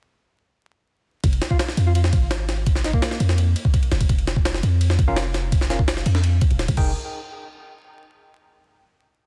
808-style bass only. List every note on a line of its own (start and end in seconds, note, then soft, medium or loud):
1.24 1.40 F1 loud
1.77 2.14 F2 medium
2.13 3.01 G#1 loud
3.20 3.55 F2 medium
3.92 4.62 F1 loud
4.63 5.00 F2 medium
4.99 5.07 G1 loud
5.08 6.04 F1 medium
6.06 6.40 F2 medium
6.51 6.67 D#1 medium
6.69 6.77 C2 loud
6.77 6.94 F1 loud